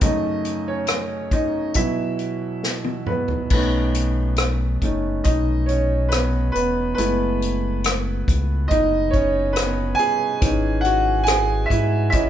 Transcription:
0.01 1.28 F#2 soft
0.01 1.28 C#3 soft
0.01 1.29 A3 soft
0.01 0.64 D#4 medium
0.01 0.69 D#5 medium
0.01 kick medium
0.01 closed hi-hat medium
0.45 closed hi-hat medium
0.68 1.29 C#4 soft
0.68 1.35 C#5 medium
0.87 cross-stick medium
0.87 closed hi-hat medium
1.31 1.73 D#4 soft
1.31 1.73 D#5 medium
1.31 kick medium
1.31 closed hi-hat soft
1.74 2.34 B2 soft
1.74 2.34 E3 soft
1.74 2.34 F#3 soft
1.74 3.04 E4 medium
1.74 3.04 E5 medium
1.74 kick medium
1.74 closed hi-hat medium
2.19 closed hi-hat soft
2.63 snare soft
2.84 high tom soft
3.06 3.49 B3 soft
3.06 3.50 B4 medium
3.06 mid tom medium
3.28 floor tom medium
3.50 4.78 B1 loud
3.50 4.79 A3 soft
3.50 5.23 B3 soft
3.50 4.79 C#4 soft
3.50 4.79 D#4 soft
3.50 5.31 B4 medium
3.50 kick medium
3.50 crash medium
3.95 closed hi-hat medium
4.36 cross-stick medium
4.36 closed hi-hat medium
4.82 5.23 F#1 medium
4.82 5.22 A3 soft
4.82 5.22 C#4 soft
4.82 5.22 D#4 soft
4.82 kick medium
4.82 closed hi-hat medium
5.24 6.51 B1 loud
5.24 5.67 D#4 medium
5.24 5.70 D#5 medium
5.24 kick medium
5.24 closed hi-hat medium
5.66 6.10 C#4 soft
5.66 6.08 C#5 medium
5.66 closed hi-hat soft
6.09 6.52 B3 soft
6.09 6.50 B4 medium
6.09 cross-stick medium
6.09 closed hi-hat medium
6.52 6.95 E1 medium
6.52 6.96 B3 medium
6.52 6.93 B4 medium
6.52 closed hi-hat medium
6.95 8.24 F#1 loud
6.95 7.55 G#3 soft
6.95 7.56 A3 soft
6.95 7.56 E4 medium
6.95 8.65 B4 medium
6.95 closed hi-hat medium
6.99 8.67 B3 medium
7.42 closed hi-hat medium
7.84 cross-stick medium
7.84 closed hi-hat medium
8.28 8.68 C#2 medium
8.28 kick medium
8.28 closed hi-hat soft
8.68 9.95 F#1 loud
8.68 9.09 D#5 medium
8.68 kick medium
8.68 closed hi-hat medium
8.72 9.11 D#4 medium
9.11 9.56 C#5 medium
9.11 kick medium
9.11 closed hi-hat soft
9.15 9.54 C#4 medium
9.53 9.94 B4 medium
9.53 cross-stick loud
9.53 closed hi-hat medium
9.57 9.97 B3 medium
9.95 10.85 G#5 loud
9.95 closed hi-hat soft
9.99 10.81 G#4 medium
10.41 11.67 G#1 loud
10.41 10.98 E3 medium
10.41 10.99 C#4 soft
10.41 10.99 D#4 medium
10.41 kick loud
10.41 closed hi-hat medium
10.81 11.27 F#5 medium
10.81 closed hi-hat medium
10.86 11.25 F#4 medium
11.24 11.70 G#5 loud
11.24 closed hi-hat medium
11.28 11.68 G#4 medium
11.28 cross-stick medium
11.66 12.09 E5 medium
11.70 12.10 G#2 medium
11.70 12.11 E4 medium
11.70 kick medium
11.70 closed hi-hat medium
12.10 12.30 G#1 loud
12.10 12.30 E3 soft
12.10 12.30 C#4 soft
12.10 12.30 E4 medium
12.10 12.30 D#5 medium
12.10 12.30 E5 medium
12.10 kick medium
12.10 closed hi-hat medium

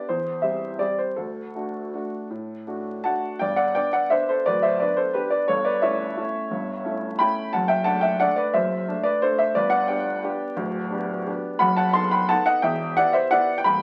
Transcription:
0.09 0.42 E2 soft
0.09 0.43 C5 medium
0.42 0.76 G3 soft
0.42 0.76 C4 soft
0.42 0.77 G4 soft
0.42 0.79 E5 medium
0.79 1.14 G3 soft
0.79 1.14 C4 soft
0.79 1.14 G4 soft
0.79 0.98 D5 medium
0.98 1.17 C5 medium
1.16 1.54 D2 soft
1.16 3.04 A4 medium
1.55 1.90 A3 soft
1.55 1.90 D4 soft
1.55 1.90 F#4 soft
1.94 2.27 A3 soft
1.94 2.27 D4 soft
1.94 2.27 F#4 soft
2.30 2.66 A2 soft
2.67 3.01 A3 soft
2.67 3.01 D4 soft
2.67 3.01 F#4 soft
3.04 3.38 A3 soft
3.04 3.38 D4 soft
3.04 3.39 F#4 soft
3.04 3.40 F#5 medium
3.04 3.41 A5 medium
3.39 3.76 G1 soft
3.39 3.76 G2 soft
3.39 3.55 D5 medium
3.39 3.58 G5 medium
3.56 3.74 D5 medium
3.56 3.76 F#5 medium
3.75 4.08 B3 soft
3.75 4.08 D4 soft
3.75 3.93 D5 medium
3.75 3.94 G5 medium
3.93 4.11 D5 medium
3.93 4.12 F#5 medium
4.10 4.43 B3 soft
4.10 4.43 D4 soft
4.10 4.27 C5 medium
4.10 4.29 E5 medium
4.29 4.46 A4 medium
4.29 4.46 C5 medium
4.46 4.80 D1 soft
4.46 4.80 D2 medium
4.46 4.62 B4 medium
4.46 4.63 D5 medium
4.62 4.80 C5 medium
4.62 4.80 E5 medium
4.80 5.12 B3 soft
4.80 5.12 D4 soft
4.80 4.97 B4 medium
4.80 4.98 D5 medium
4.97 5.14 A4 medium
4.97 5.15 C5 medium
5.14 5.46 B3 soft
5.14 5.46 D4 soft
5.14 5.31 G4 medium
5.14 5.30 B4 medium
5.30 5.48 B4 medium
5.30 5.49 D5 medium
5.48 5.82 G1 medium
5.48 5.82 G2 medium
5.48 5.65 A4 medium
5.48 5.66 C#5 medium
5.65 5.82 B4 medium
5.65 5.82 D5 medium
5.82 6.13 A3 soft
5.82 6.14 C#4 soft
5.82 6.14 E4 medium
5.82 7.15 C#5 medium
5.82 7.19 E5 medium
6.17 6.48 A3 soft
6.17 6.48 C#4 soft
6.17 6.48 E4 soft
6.51 6.84 G1 soft
6.51 6.84 G2 medium
6.85 7.16 A3 soft
6.85 7.16 C#4 soft
6.85 7.17 E4 soft
7.19 7.50 A3 soft
7.19 7.50 C#4 soft
7.19 7.50 E4 soft
7.19 7.51 G5 medium
7.19 7.53 B5 loud
7.53 7.86 F#1 soft
7.53 7.86 F#2 medium
7.53 7.69 F#5 medium
7.53 7.69 A5 medium
7.68 7.85 E5 medium
7.68 7.86 G5 loud
7.84 8.17 A3 soft
7.84 8.17 D4 soft
7.84 8.02 F#5 medium
7.84 8.03 A5 loud
8.01 8.19 E5 medium
8.01 8.20 G5 loud
8.20 8.51 A3 medium
8.20 8.51 D4 medium
8.20 8.35 D5 medium
8.20 8.38 F#5 loud
8.36 8.53 B4 medium
8.36 8.54 D5 medium
8.54 8.88 F#1 soft
8.54 8.88 F#2 medium
8.54 9.03 C5 medium
8.54 9.06 E5 medium
8.88 9.20 A3 soft
8.88 9.20 D4 soft
9.03 9.22 B4 medium
9.03 9.22 D5 medium
9.22 9.53 A3 medium
9.22 9.53 D4 medium
9.22 9.39 A4 medium
9.22 9.38 C5 loud
9.39 9.55 C5 medium
9.39 9.56 E5 loud
9.55 9.88 G1 medium
9.55 9.88 G2 medium
9.55 9.71 B4 medium
9.55 9.69 D5 loud
9.70 9.87 D5 medium
9.70 9.88 F#5 loud
9.88 10.21 B3 soft
9.88 10.21 D4 medium
9.88 10.21 G4 soft
9.88 11.23 D5 medium
9.88 11.26 G5 medium
10.23 10.55 B3 medium
10.23 10.55 D4 medium
10.23 10.55 G4 medium
10.56 10.90 D1 medium
10.56 10.90 D2 medium
10.90 11.23 B3 medium
10.90 11.23 D4 medium
10.90 11.24 G4 medium
11.26 11.57 B3 medium
11.26 11.57 D4 soft
11.26 11.57 G4 medium
11.59 11.93 F#1 medium
11.59 11.93 F#2 medium
11.59 11.76 F#5 medium
11.59 11.77 B5 loud
11.77 11.93 F#5 medium
11.77 11.94 A5 loud
11.93 12.26 B3 medium
11.93 12.26 D#4 medium
11.93 12.26 A4 medium
11.93 12.11 A5 medium
11.93 12.11 C6 loud
12.11 12.28 G5 medium
12.11 12.29 B5 loud
12.29 12.60 B3 medium
12.29 12.61 D#4 medium
12.29 12.61 A4 medium
12.29 12.44 F#5 medium
12.29 12.46 A5 loud
12.46 12.62 D#5 medium
12.46 12.63 F#5 loud
12.62 12.96 E1 medium
12.62 12.96 E2 medium
12.62 12.95 E5 medium
12.62 12.96 G5 loud
12.97 13.30 B3 medium
12.97 13.30 E4 medium
12.97 13.30 G4 medium
12.97 13.14 D5 medium
12.97 13.15 F#5 loud
13.13 13.31 C5 medium
13.13 13.32 E5 loud
13.31 13.64 B3 medium
13.31 13.64 E4 medium
13.31 13.64 G4 medium
13.31 13.57 D5 medium
13.31 13.58 F#5 loud
13.58 13.64 G5 loud
13.64 13.82 C1 medium
13.64 13.82 C2 medium
13.64 13.82 G5 loud
13.64 13.82 B5 loud

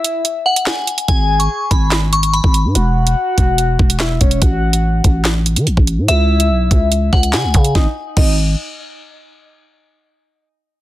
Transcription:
0.00 0.21 E5 loud
0.00 0.42 E5 loud
0.04 closed hi-hat medium
0.25 closed hi-hat medium
0.46 0.62 F#5 loud
0.56 closed hi-hat medium
0.66 1.06 G#5 medium
0.66 snare loud
0.66 clap medium
0.87 closed hi-hat medium
0.98 closed hi-hat medium
1.08 1.48 G#1 loud
1.08 1.88 G#5 loud
1.08 1.38 G#5 loud
1.08 kick loud
1.08 closed hi-hat medium
1.39 1.69 C#6 medium
1.39 closed hi-hat medium
1.71 2.41 G#1 loud
1.71 1.87 B5 medium
1.71 kick medium
1.71 closed hi-hat medium
1.91 snare loud
1.91 clap loud
2.13 2.29 C#6 medium
2.13 closed hi-hat medium
2.23 closed hi-hat medium
2.33 2.50 B5 medium
2.33 closed hi-hat soft
2.44 2.66 G#1 loud
2.44 kick medium
2.54 closed hi-hat medium
2.65 2.75 G#2 loud
2.75 3.15 E1 loud
2.75 3.96 F#5 loud
2.75 closed hi-hat medium
3.07 closed hi-hat medium
3.38 3.78 E1 loud
3.38 kick medium
3.38 closed hi-hat medium
3.58 closed hi-hat medium
3.79 4.19 E1 loud
3.79 kick loud
3.90 closed hi-hat medium
4.00 4.20 E5 medium
4.00 snare loud
4.00 clap medium
4.21 4.41 E1 loud
4.21 4.41 C#5 medium
4.21 kick medium
4.21 closed hi-hat medium
4.31 closed hi-hat medium
4.42 5.02 A1 loud
4.42 5.21 F#5 loud
4.42 kick loud
4.42 closed hi-hat medium
4.73 closed hi-hat medium
5.04 5.58 A1 loud
5.04 kick loud
5.04 closed hi-hat medium
5.25 snare loud
5.25 clap medium
5.46 closed hi-hat medium
5.56 5.68 E3 loud
5.56 closed hi-hat medium
5.67 5.77 A1 loud
5.67 closed hi-hat medium
5.77 6.00 A1 loud
5.77 kick medium
5.87 closed hi-hat medium
5.98 6.08 A2 loud
6.08 6.52 C#2 loud
6.08 7.09 E5 loud
6.08 6.88 E5 loud
6.08 closed hi-hat medium
6.40 closed hi-hat medium
6.50 6.70 B1 loud
6.71 7.11 C#2 loud
6.71 kick loud
6.71 closed hi-hat medium
6.92 closed hi-hat medium
7.13 7.35 C#2 loud
7.13 7.29 F#5 loud
7.13 kick loud
7.23 closed hi-hat medium
7.33 7.45 C#3 loud
7.33 7.73 G#5 medium
7.33 snare loud
7.33 clap medium
7.44 7.54 C#2 loud
7.54 7.74 C#3 loud
7.54 kick medium
7.54 closed hi-hat medium
7.64 closed hi-hat medium
7.75 7.87 G#1 loud
7.75 7.87 D#5 medium
7.75 kick loud
7.75 snare medium
8.17 8.56 G#1 loud
8.17 8.36 D#5 medium
8.17 kick loud
8.17 crash medium

